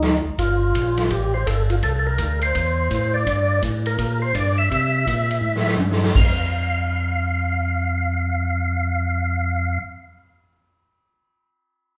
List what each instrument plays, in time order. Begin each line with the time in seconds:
Already playing: tonewheel organ D2 D#4
0.02 snare, closed hi-hat
0.24 tonewheel organ D2
0.38 tonewheel organ G1 F4, kick, ride
0.74 tonewheel organ A#1, kick, hi-hat pedal, ride
0.97 snare, ride
1.10 tonewheel organ A1 G4, kick, ride
1.34 tonewheel organ C5
1.46 tonewheel organ G1 A4, kick, hi-hat pedal, ride
1.70 tonewheel organ F4, ride
1.82 tonewheel organ C2 A4, kick, ride
1.99 tonewheel organ A4
2.07 tonewheel organ A#4
2.18 tonewheel organ D2, kick, hi-hat pedal, ride
2.41 tonewheel organ C5, ride
2.55 tonewheel organ E2, kick, ride
2.90 tonewheel organ A2, kick, hi-hat pedal, ride
3.14 tonewheel organ D5
3.26 tonewheel organ G2, kick, ride
3.62 tonewheel organ A2, kick, hi-hat pedal, ride
3.86 tonewheel organ A#4, ride
3.98 tonewheel organ A#2, kick, ride
4.22 tonewheel organ C5
4.35 tonewheel organ G2 D5, kick, hi-hat pedal, ride
4.58 tonewheel organ E5
4.71 tonewheel organ C3, kick, ride
5.07 tonewheel organ A#2, kick, hi-hat pedal, ride
5.30 ride
5.41 tonewheel organ A2
5.56 snare
5.67 snare
5.77 tonewheel organ G2, hi-hat pedal, high tom
5.91 snare
6.04 snare
6.15 tonewheel organ F2 F5, kick, crash